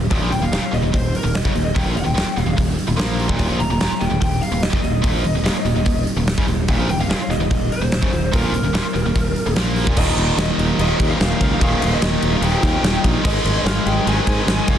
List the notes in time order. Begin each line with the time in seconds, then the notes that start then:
0.10 D#1 D#2 A#2, kick, open hi-hat
0.20 A#1 A#2 F3
0.31 D#1 D#2 A#2 G5, open hi-hat
0.41 D#1 D#2 A#2 F5
0.51 D#1 D#2 A#2, snare, open hi-hat
0.62 muted fingered electric bass stroke, muted distorted electric guitar stroke
0.72 D#1 D#2 A#2 D#5, open hi-hat
0.83 D#1 D#2 A#2
0.93 D#1 D#2 A#2 C5, kick, open hi-hat
1.15 A#4, open hi-hat
1.24 D#1 D#2 A#2
1.35 D#5, snare, open hi-hat
1.45 F#1 F#2 C#3, kick
1.55 D#1 D#2 A#2, open hi-hat
1.65 D#5
1.75 D#1 D#2 A#2 G5, kick, open hi-hat
1.85 A#1 A#2 F3
1.95 D#1 D#2 A#2 G5, open hi-hat
2.04 D#1 D#2 A#2
2.15 D#1 D#2 A#2, snare, open hi-hat
2.25 muted distorted electric guitar stroke, muted fingered electric bass stroke
2.37 D#1 D#2 A#2 F5, open hi-hat
2.46 D#1 D#2 A#2
2.57 D#1 D#2 A#2, kick, open hi-hat
2.79 open hi-hat
2.88 D#1 D#2 A#2
2.97 A#1 A#2 F3 A#3, snare, open hi-hat
3.19 open hi-hat
3.28 D#1 D#2 A#2, kick
3.38 D#1 D#2 A#2, kick, open hi-hat
3.50 A#1 A#2 F3
3.59 D#1 D#2 A#2 A#5, open hi-hat
3.70 D#1 D#2 A#2 A#5
3.81 D#1 D#2 A#2, snare, open hi-hat
3.90 muted distorted electric guitar stroke, muted fingered electric bass stroke
3.99 D#1 D#2 A#2 G5, open hi-hat
4.10 D#1 D#2 A#2
4.21 D#1 D#2 A#2 G5, kick, open hi-hat
4.42 F5, open hi-hat
4.51 D#1 D#2 A#2
4.62 D#5, snare, open hi-hat
4.70 F#1 F#2 C#3, kick
4.81 D#1 D#2 A#2 D#5, open hi-hat
5.02 D#1 D#2 A#2, kick, open hi-hat
5.12 A#1 A#2 F3
5.23 D#1 D#2 A#2, open hi-hat
5.35 D#1 D#2 A#2
5.43 D#1 D#2 A#2, snare, open hi-hat
5.54 muted fingered electric bass stroke, muted distorted electric guitar stroke
5.65 D#1 D#2 A#2, open hi-hat
5.75 D#1 D#2 A#2
5.85 D#1 D#2 A#2, kick, open hi-hat
6.07 open hi-hat
6.16 D#1 D#2 A#2
6.27 snare, open hi-hat
6.38 F#1 F#2 C#3, kick
6.47 D#1 D#2 A#2, open hi-hat
6.68 D#1 D#2 A#2, kick, open hi-hat
6.77 A#1 A#2 F3
6.88 D#1 D#2 A#2 G5, open hi-hat
6.99 D#1 D#2 A#2 F5
7.08 D#1 D#2 A#2, snare, open hi-hat
7.18 muted fingered electric bass stroke, muted distorted electric guitar stroke
7.28 D#1 D#2 A#2 D#5, snare, open hi-hat
7.38 D#1 D#2 A#2
7.51 D#1 D#2 A#2, kick, open hi-hat
7.72 C5, open hi-hat
7.80 D#1 D#2 A#2
7.92 snare, open hi-hat
8.02 F#1 F#2 C#3, kick
8.13 D#1 D#2 A#2, open hi-hat
8.33 D#1 D#2 A#2 A#4, kick, open hi-hat
8.43 A#1 A#2 F3
8.52 D#1 D#2 A#2, open hi-hat
8.64 D#1 D#2 A#2
8.74 D#1 D#2 A#2, snare, open hi-hat
8.84 muted distorted electric guitar stroke, muted fingered electric bass stroke
8.94 D#1 D#2 A#2, open hi-hat
9.06 D#1 D#2 A#2
9.15 D#1 D#2 A#2, kick, open hi-hat
9.36 open hi-hat
9.46 D#1 D#2 A#2
9.56 A#1 A#2 F3 A#3, snare, open hi-hat
9.76 open hi-hat
9.87 D#1 D#2 A#2, kick
9.97 D#1 D#2 A#2 D#3 D#5, kick, crash
10.17 D#1, ride
10.38 D#1, snare, ride
10.58 D#1, ride
10.79 D#1 D#2 A#2 D#3 D#5, ride
11.00 D#2, kick, ride
11.10 F5
11.20 D#1, snare, ride
11.41 C#2 F5, kick, ride
11.60 D#1 D#2 A#2 D#3, kick, ride
11.82 D#1, ride
11.94 D#5
12.02 D#1 D#5, snare, ride
12.22 D#1, ride
12.34 F5
12.41 D#1 D#2 A#2 D#3 G5, ride
12.63 D#2, kick, ride
12.83 D#1, snare, ride
13.04 A#1, kick, ride
13.23 G#1 G#2 D#3 G#3 D#5, kick, crash
13.45 G#1, ride
13.58 D#5
13.65 G#1 F5, snare, ride
13.86 G#1 G5, ride
14.05 G#1 G#2 D#3 G#3 G#5, ride
14.27 G#2 G#5, kick, ride
14.46 G#1, snare, ride
14.68 F1 F5, kick, ride